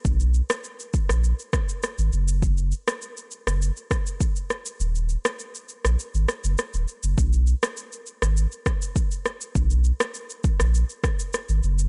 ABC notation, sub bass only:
X:1
M:4/4
L:1/16
Q:1/4=101
K:Abdor
V:1 name="Sub bass" clef=bass
C,,3 z4 B,,,2 z4 A,,, G,,,2- | G,,,3 z4 G,,,2 z6 z | E,,,3 z4 B,,, z A,,, z G,,, z E,,, z G,,, | C,,3 z4 A,,,2 z6 z |
C,,3 z4 B,,,2 z4 A,,, G,,,2 |]